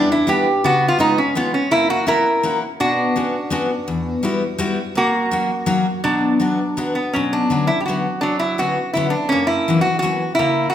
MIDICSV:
0, 0, Header, 1, 3, 480
1, 0, Start_track
1, 0, Key_signature, 2, "minor"
1, 0, Tempo, 360577
1, 844, Time_signature, 3, 2, 24, 8
1, 14306, End_track
2, 0, Start_track
2, 0, Title_t, "Resonator guitar played with a steel bar"
2, 0, Program_c, 0, 25
2, 0, Note_on_c, 0, 62, 90
2, 147, Note_off_c, 0, 62, 0
2, 157, Note_on_c, 0, 64, 85
2, 383, Note_on_c, 0, 67, 84
2, 388, Note_off_c, 0, 64, 0
2, 856, Note_on_c, 0, 59, 68
2, 864, Note_off_c, 0, 67, 0
2, 871, Note_on_c, 0, 66, 105
2, 1153, Note_off_c, 0, 66, 0
2, 1177, Note_on_c, 0, 65, 86
2, 1327, Note_off_c, 0, 65, 0
2, 1333, Note_on_c, 0, 63, 92
2, 1517, Note_off_c, 0, 59, 0
2, 1573, Note_on_c, 0, 61, 75
2, 1574, Note_off_c, 0, 63, 0
2, 1808, Note_off_c, 0, 61, 0
2, 1822, Note_on_c, 0, 59, 71
2, 2046, Note_off_c, 0, 59, 0
2, 2051, Note_on_c, 0, 61, 72
2, 2281, Note_off_c, 0, 61, 0
2, 2284, Note_on_c, 0, 64, 96
2, 2285, Note_on_c, 0, 58, 73
2, 2504, Note_off_c, 0, 64, 0
2, 2529, Note_on_c, 0, 66, 94
2, 2756, Note_off_c, 0, 58, 0
2, 2762, Note_on_c, 0, 64, 68
2, 2766, Note_off_c, 0, 66, 0
2, 2772, Note_on_c, 0, 70, 103
2, 3437, Note_off_c, 0, 64, 0
2, 3440, Note_off_c, 0, 70, 0
2, 3728, Note_on_c, 0, 62, 66
2, 3734, Note_on_c, 0, 66, 97
2, 6543, Note_off_c, 0, 62, 0
2, 6606, Note_off_c, 0, 66, 0
2, 6617, Note_on_c, 0, 58, 69
2, 6624, Note_on_c, 0, 66, 97
2, 7988, Note_off_c, 0, 58, 0
2, 7991, Note_off_c, 0, 66, 0
2, 8036, Note_on_c, 0, 54, 63
2, 8037, Note_on_c, 0, 62, 88
2, 9204, Note_off_c, 0, 62, 0
2, 9206, Note_off_c, 0, 54, 0
2, 9253, Note_on_c, 0, 59, 62
2, 9497, Note_on_c, 0, 61, 75
2, 9504, Note_off_c, 0, 59, 0
2, 9511, Note_on_c, 0, 54, 59
2, 9752, Note_off_c, 0, 61, 0
2, 9756, Note_on_c, 0, 62, 79
2, 10187, Note_off_c, 0, 54, 0
2, 10214, Note_on_c, 0, 64, 86
2, 10251, Note_off_c, 0, 62, 0
2, 10358, Note_off_c, 0, 64, 0
2, 10389, Note_on_c, 0, 67, 56
2, 10452, Note_off_c, 0, 67, 0
2, 10457, Note_on_c, 0, 66, 63
2, 10929, Note_on_c, 0, 62, 87
2, 10956, Note_on_c, 0, 54, 56
2, 10959, Note_off_c, 0, 66, 0
2, 11169, Note_off_c, 0, 62, 0
2, 11174, Note_on_c, 0, 64, 85
2, 11427, Note_off_c, 0, 64, 0
2, 11434, Note_on_c, 0, 66, 82
2, 11623, Note_off_c, 0, 54, 0
2, 11888, Note_off_c, 0, 66, 0
2, 11894, Note_on_c, 0, 64, 78
2, 12110, Note_off_c, 0, 64, 0
2, 12115, Note_on_c, 0, 62, 78
2, 12364, Note_on_c, 0, 61, 93
2, 12370, Note_off_c, 0, 62, 0
2, 12404, Note_on_c, 0, 58, 65
2, 12605, Note_on_c, 0, 64, 90
2, 12626, Note_off_c, 0, 61, 0
2, 13056, Note_off_c, 0, 64, 0
2, 13061, Note_on_c, 0, 66, 90
2, 13064, Note_off_c, 0, 58, 0
2, 13283, Note_off_c, 0, 66, 0
2, 13299, Note_on_c, 0, 66, 91
2, 13770, Note_off_c, 0, 66, 0
2, 13775, Note_on_c, 0, 64, 95
2, 13835, Note_on_c, 0, 58, 70
2, 14233, Note_off_c, 0, 64, 0
2, 14239, Note_on_c, 0, 66, 94
2, 14306, Note_off_c, 0, 58, 0
2, 14306, Note_off_c, 0, 66, 0
2, 14306, End_track
3, 0, Start_track
3, 0, Title_t, "Steel-string acoustic guitar"
3, 0, Program_c, 1, 25
3, 0, Note_on_c, 1, 59, 55
3, 0, Note_on_c, 1, 62, 60
3, 0, Note_on_c, 1, 64, 72
3, 135, Note_off_c, 1, 59, 0
3, 141, Note_off_c, 1, 62, 0
3, 146, Note_off_c, 1, 64, 0
3, 358, Note_on_c, 1, 55, 72
3, 369, Note_on_c, 1, 59, 61
3, 375, Note_on_c, 1, 62, 66
3, 384, Note_on_c, 1, 64, 67
3, 604, Note_off_c, 1, 55, 0
3, 609, Note_off_c, 1, 59, 0
3, 613, Note_off_c, 1, 62, 0
3, 615, Note_off_c, 1, 64, 0
3, 855, Note_on_c, 1, 49, 70
3, 1204, Note_off_c, 1, 49, 0
3, 1312, Note_on_c, 1, 56, 61
3, 1324, Note_on_c, 1, 59, 46
3, 1326, Note_on_c, 1, 61, 58
3, 1339, Note_on_c, 1, 65, 76
3, 1558, Note_off_c, 1, 56, 0
3, 1560, Note_off_c, 1, 59, 0
3, 1564, Note_off_c, 1, 61, 0
3, 1570, Note_off_c, 1, 65, 0
3, 1801, Note_on_c, 1, 56, 67
3, 1810, Note_on_c, 1, 59, 59
3, 1818, Note_on_c, 1, 61, 69
3, 1825, Note_on_c, 1, 65, 77
3, 2040, Note_off_c, 1, 56, 0
3, 2044, Note_off_c, 1, 59, 0
3, 2048, Note_off_c, 1, 61, 0
3, 2051, Note_off_c, 1, 65, 0
3, 2279, Note_on_c, 1, 42, 64
3, 2635, Note_off_c, 1, 42, 0
3, 2750, Note_on_c, 1, 58, 58
3, 2756, Note_on_c, 1, 61, 50
3, 2765, Note_on_c, 1, 66, 68
3, 2772, Note_on_c, 1, 64, 51
3, 2996, Note_off_c, 1, 58, 0
3, 2998, Note_off_c, 1, 61, 0
3, 3005, Note_off_c, 1, 64, 0
3, 3006, Note_off_c, 1, 66, 0
3, 3240, Note_on_c, 1, 58, 65
3, 3250, Note_on_c, 1, 61, 54
3, 3259, Note_on_c, 1, 66, 72
3, 3264, Note_on_c, 1, 64, 50
3, 3485, Note_off_c, 1, 58, 0
3, 3491, Note_off_c, 1, 61, 0
3, 3493, Note_off_c, 1, 64, 0
3, 3494, Note_off_c, 1, 66, 0
3, 3728, Note_on_c, 1, 47, 67
3, 4084, Note_off_c, 1, 47, 0
3, 4203, Note_on_c, 1, 61, 59
3, 4210, Note_on_c, 1, 59, 52
3, 4213, Note_on_c, 1, 62, 51
3, 4222, Note_on_c, 1, 66, 66
3, 4447, Note_off_c, 1, 61, 0
3, 4448, Note_off_c, 1, 59, 0
3, 4452, Note_off_c, 1, 62, 0
3, 4456, Note_off_c, 1, 66, 0
3, 4664, Note_on_c, 1, 59, 81
3, 4673, Note_on_c, 1, 61, 66
3, 4680, Note_on_c, 1, 62, 79
3, 4692, Note_on_c, 1, 66, 91
3, 4916, Note_off_c, 1, 59, 0
3, 4921, Note_off_c, 1, 61, 0
3, 4924, Note_off_c, 1, 62, 0
3, 4930, Note_off_c, 1, 66, 0
3, 5160, Note_on_c, 1, 40, 73
3, 5517, Note_off_c, 1, 40, 0
3, 5628, Note_on_c, 1, 55, 72
3, 5635, Note_on_c, 1, 59, 61
3, 5639, Note_on_c, 1, 64, 61
3, 5652, Note_on_c, 1, 66, 82
3, 5876, Note_off_c, 1, 55, 0
3, 5876, Note_off_c, 1, 59, 0
3, 5881, Note_off_c, 1, 64, 0
3, 5887, Note_off_c, 1, 66, 0
3, 6104, Note_on_c, 1, 55, 82
3, 6116, Note_on_c, 1, 66, 86
3, 6118, Note_on_c, 1, 59, 59
3, 6122, Note_on_c, 1, 64, 75
3, 6352, Note_off_c, 1, 55, 0
3, 6357, Note_off_c, 1, 59, 0
3, 6359, Note_off_c, 1, 66, 0
3, 6361, Note_off_c, 1, 64, 0
3, 6595, Note_on_c, 1, 42, 67
3, 6949, Note_off_c, 1, 42, 0
3, 7074, Note_on_c, 1, 54, 71
3, 7079, Note_on_c, 1, 58, 54
3, 7083, Note_on_c, 1, 61, 64
3, 7096, Note_on_c, 1, 66, 81
3, 7313, Note_off_c, 1, 58, 0
3, 7314, Note_off_c, 1, 54, 0
3, 7317, Note_off_c, 1, 61, 0
3, 7324, Note_off_c, 1, 66, 0
3, 7538, Note_on_c, 1, 54, 92
3, 7547, Note_on_c, 1, 58, 86
3, 7553, Note_on_c, 1, 61, 66
3, 7564, Note_on_c, 1, 66, 84
3, 7787, Note_off_c, 1, 54, 0
3, 7791, Note_off_c, 1, 58, 0
3, 7795, Note_off_c, 1, 61, 0
3, 7798, Note_off_c, 1, 66, 0
3, 8037, Note_on_c, 1, 47, 69
3, 8395, Note_off_c, 1, 47, 0
3, 8514, Note_on_c, 1, 54, 58
3, 8524, Note_on_c, 1, 59, 53
3, 8532, Note_on_c, 1, 62, 62
3, 8540, Note_on_c, 1, 66, 68
3, 8762, Note_off_c, 1, 54, 0
3, 8764, Note_off_c, 1, 59, 0
3, 8770, Note_off_c, 1, 62, 0
3, 8774, Note_off_c, 1, 66, 0
3, 9012, Note_on_c, 1, 54, 70
3, 9021, Note_on_c, 1, 59, 62
3, 9024, Note_on_c, 1, 62, 62
3, 9030, Note_on_c, 1, 66, 79
3, 9260, Note_off_c, 1, 54, 0
3, 9260, Note_off_c, 1, 59, 0
3, 9265, Note_off_c, 1, 62, 0
3, 9268, Note_off_c, 1, 66, 0
3, 9533, Note_on_c, 1, 47, 66
3, 9880, Note_off_c, 1, 47, 0
3, 9984, Note_on_c, 1, 50, 57
3, 9995, Note_on_c, 1, 54, 53
3, 10001, Note_on_c, 1, 61, 66
3, 10010, Note_on_c, 1, 59, 45
3, 10231, Note_off_c, 1, 50, 0
3, 10233, Note_off_c, 1, 54, 0
3, 10240, Note_off_c, 1, 59, 0
3, 10241, Note_off_c, 1, 61, 0
3, 10488, Note_on_c, 1, 50, 64
3, 10497, Note_on_c, 1, 54, 53
3, 10502, Note_on_c, 1, 59, 55
3, 10508, Note_on_c, 1, 61, 68
3, 10724, Note_off_c, 1, 50, 0
3, 10725, Note_off_c, 1, 54, 0
3, 10730, Note_off_c, 1, 59, 0
3, 10733, Note_off_c, 1, 61, 0
3, 10956, Note_on_c, 1, 42, 63
3, 11310, Note_off_c, 1, 42, 0
3, 11425, Note_on_c, 1, 50, 63
3, 11433, Note_on_c, 1, 54, 51
3, 11439, Note_on_c, 1, 61, 72
3, 11444, Note_on_c, 1, 59, 56
3, 11669, Note_off_c, 1, 50, 0
3, 11673, Note_off_c, 1, 54, 0
3, 11676, Note_off_c, 1, 59, 0
3, 11677, Note_off_c, 1, 61, 0
3, 11917, Note_on_c, 1, 50, 59
3, 11928, Note_on_c, 1, 54, 57
3, 11936, Note_on_c, 1, 59, 62
3, 11941, Note_on_c, 1, 61, 79
3, 12155, Note_off_c, 1, 50, 0
3, 12157, Note_off_c, 1, 54, 0
3, 12164, Note_off_c, 1, 59, 0
3, 12167, Note_off_c, 1, 61, 0
3, 12413, Note_on_c, 1, 42, 62
3, 12758, Note_off_c, 1, 42, 0
3, 12886, Note_on_c, 1, 52, 72
3, 12894, Note_on_c, 1, 58, 54
3, 12899, Note_on_c, 1, 54, 49
3, 12910, Note_on_c, 1, 61, 69
3, 13117, Note_off_c, 1, 52, 0
3, 13119, Note_off_c, 1, 54, 0
3, 13120, Note_off_c, 1, 58, 0
3, 13128, Note_off_c, 1, 61, 0
3, 13342, Note_on_c, 1, 52, 59
3, 13350, Note_on_c, 1, 54, 61
3, 13360, Note_on_c, 1, 58, 55
3, 13369, Note_on_c, 1, 61, 67
3, 13582, Note_off_c, 1, 52, 0
3, 13587, Note_off_c, 1, 54, 0
3, 13589, Note_off_c, 1, 58, 0
3, 13595, Note_off_c, 1, 61, 0
3, 13831, Note_on_c, 1, 49, 62
3, 14182, Note_off_c, 1, 49, 0
3, 14306, End_track
0, 0, End_of_file